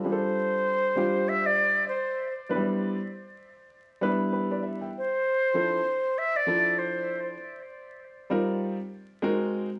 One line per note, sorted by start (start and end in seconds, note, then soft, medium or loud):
0.00 0.11 A4 medium
0.04 0.91 G3 medium
0.04 0.92 C4 medium
0.04 0.92 D4 medium
0.04 0.92 F4 medium
0.04 0.13 G#4 medium
0.09 0.95 A4 medium
0.09 1.30 C5 medium
0.96 1.83 G3 medium
0.96 1.83 C4 medium
0.96 1.83 D4 medium
0.96 1.84 F4 medium
0.96 1.84 G4 medium
1.28 1.47 E5 loud
1.46 1.88 D5 loud
1.88 2.34 C5 medium
2.49 2.57 F#3 medium
2.49 2.95 B3 medium
2.49 2.95 D4 medium
2.49 2.95 E4 medium
2.49 2.95 B4 medium
2.56 2.98 G3 medium
4.01 4.89 G3 medium
4.01 4.89 B3 medium
4.01 4.89 D4 medium
4.01 4.89 E4 medium
4.01 4.31 B4 medium
4.33 4.50 G4 medium
4.33 4.50 B4 medium
4.51 4.63 B4 medium
4.51 4.63 D5 medium
4.63 4.80 E5 medium
4.81 5.11 E5 medium
4.81 5.11 G5 soft
4.98 6.20 C5 medium
5.54 5.78 F3 medium
5.54 5.78 C4 medium
5.54 5.78 D4 medium
5.54 5.78 E4 medium
5.54 5.79 A4 medium
6.18 6.38 E5 medium
6.36 6.80 D5 loud
6.46 7.34 F3 medium
6.46 7.34 C4 medium
6.46 7.34 D4 medium
6.46 7.34 E4 medium
6.46 7.34 A4 medium
6.78 7.27 C5 medium
8.30 8.76 G3 medium
8.30 8.76 C4 medium
8.30 8.76 D#4 medium
8.30 8.76 F4 medium
8.30 8.76 A#4 medium
9.22 9.68 G#3 medium
9.22 9.68 C4 medium
9.22 9.68 D#4 medium
9.22 9.68 F#4 medium
9.22 9.69 A#4 loud